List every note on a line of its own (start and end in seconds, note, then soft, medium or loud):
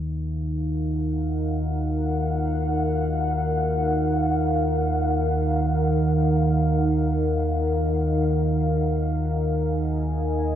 0.00 10.55 D#2 medium
0.00 10.55 D#3 medium
0.00 10.55 D#4 medium
0.00 10.55 A#4 medium
0.00 9.06 F5 medium
0.22 9.46 F#5 medium
8.76 10.55 D#5 medium
9.17 10.55 G#5 medium